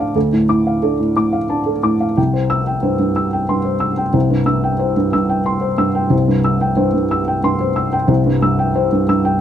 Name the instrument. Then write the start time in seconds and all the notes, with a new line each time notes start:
felt piano
Already playing: D2 A2 D4 A4 A5 D6
0.00 F5
0.15 D2 A4
0.33 A2
0.49 A2 D6
0.67 F5
0.82 D4 A4
0.99 A2
1.16 A2 D6
1.33 F5
1.49 D4 A5
1.66 A4
1.83 A2 D6
2.00 F5
2.17 C2 G5
2.33 C5
2.50 E6
2.67 G5
2.83 G2 C5
2.99 G2
3.16 E6
3.33 G5
3.49 G2 C6
3.65 C5
3.80 E6
3.98 G5
4.13 C2 C5
4.30 G2
4.46 G2 E6
4.64 G5
4.79 C5
4.97 G2
5.13 G2 E6
5.29 G5
5.46 C6
5.61 C5
5.78 G2 E6
5.95 G5
6.10 C2 C5
6.28 G2
6.44 E6
6.61 G5
6.77 G2 C5
6.94 G2
7.11 E6
7.28 G5
7.44 G2 C6
7.61 C5
7.76 E6
7.93 G5
8.08 C2 C5
8.26 G2
8.42 G2 E6
8.59 G5
8.76 C5
8.92 G2
9.09 G2 E6
9.25 G5